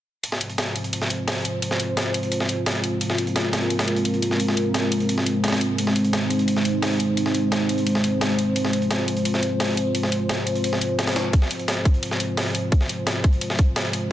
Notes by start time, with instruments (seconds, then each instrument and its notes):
0.24 analog synth pad G#3 C4 F4 C5, closed hi-hat
0.32 snare
0.41 closed hi-hat
0.50 closed hi-hat
0.58 snare, closed hi-hat
0.76 closed hi-hat
0.84 closed hi-hat
0.93 closed hi-hat
1.02 snare
1.10 closed hi-hat
1.28 snare, closed hi-hat, open hi-hat
1.45 closed hi-hat
1.62 closed hi-hat
1.71 snare
1.80 closed hi-hat
1.97 snare, closed hi-hat
2.14 closed hi-hat
2.23 closed hi-hat
2.32 closed hi-hat
2.40 snare
2.49 closed hi-hat
2.66 snare, closed hi-hat
2.75 closed hi-hat
2.84 closed hi-hat
3.01 analog synth pad A#4, closed hi-hat
3.10 snare
3.18 closed hi-hat
3.27 closed hi-hat
3.36 snare, closed hi-hat
3.53 snare, closed hi-hat
3.62 closed hi-hat
3.70 closed hi-hat
3.79 snare, closed hi-hat
3.88 closed hi-hat
3.96 closed hi-hat
4.05 closed hi-hat
4.14 closed hi-hat
4.22 closed hi-hat
4.31 snare
4.40 closed hi-hat
4.48 snare
4.57 closed hi-hat
4.74 snare, closed hi-hat
4.92 closed hi-hat
5.00 closed hi-hat
5.09 closed hi-hat
5.18 snare
5.26 closed hi-hat
5.44 snare, closed hi-hat
5.48 snare, closed hi-hat
5.52 snare, closed hi-hat
5.61 closed hi-hat
5.78 analog synth pad D#4 C5, closed hi-hat
5.87 snare
5.96 closed hi-hat
6.04 closed hi-hat
6.13 snare, closed hi-hat
6.30 closed hi-hat
6.39 closed hi-hat
6.48 closed hi-hat
6.57 snare
6.65 closed hi-hat
6.82 snare, closed hi-hat, open hi-hat
7.00 closed hi-hat
7.17 closed hi-hat
7.26 snare
7.34 closed hi-hat
7.52 snare, closed hi-hat
7.69 closed hi-hat
7.78 closed hi-hat
7.87 closed hi-hat
7.95 snare
8.04 closed hi-hat
8.21 snare, closed hi-hat
8.30 closed hi-hat
8.39 closed hi-hat
8.56 analog synth pad F4, closed hi-hat
8.65 snare
8.73 closed hi-hat
8.82 closed hi-hat
8.91 snare, closed hi-hat
9.08 closed hi-hat
9.17 closed hi-hat
9.25 closed hi-hat
9.34 snare
9.43 closed hi-hat
9.60 snare, closed hi-hat, open hi-hat
9.77 closed hi-hat
9.95 closed hi-hat
10.03 snare
10.12 closed hi-hat
10.29 snare, closed hi-hat
10.47 closed hi-hat
10.55 closed hi-hat
10.64 closed hi-hat
10.73 snare
10.81 closed hi-hat
10.99 snare, closed hi-hat
11.07 snare, closed hi-hat
11.16 snare, closed hi-hat
11.33 analog synth pad G#3 C4, kick, closed hi-hat
11.42 snare
11.51 closed hi-hat
11.59 closed hi-hat
11.68 snare, closed hi-hat
11.85 kick, closed hi-hat
11.94 closed hi-hat
12.03 closed hi-hat
12.11 snare
12.20 closed hi-hat
12.37 snare, closed hi-hat, open hi-hat
12.55 closed hi-hat
12.72 kick, closed hi-hat
12.81 snare
12.89 closed hi-hat
13.07 snare, closed hi-hat
13.24 kick, closed hi-hat
13.33 closed hi-hat
13.41 closed hi-hat
13.50 snare
13.59 kick, closed hi-hat
13.76 snare, closed hi-hat
13.85 closed hi-hat
13.93 closed hi-hat